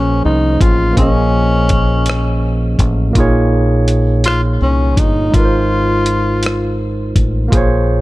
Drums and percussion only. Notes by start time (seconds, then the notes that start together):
0.61 kick, closed hi-hat
0.97 kick, closed hi-hat
1.69 kick, closed hi-hat
2.06 cross-stick, closed hi-hat
2.79 kick, closed hi-hat
3.15 kick, closed hi-hat
3.88 closed hi-hat
4.24 cross-stick, closed hi-hat
4.97 kick, closed hi-hat
5.34 kick, closed hi-hat
6.06 closed hi-hat
6.43 cross-stick, closed hi-hat
7.16 kick, closed hi-hat
7.52 kick, closed hi-hat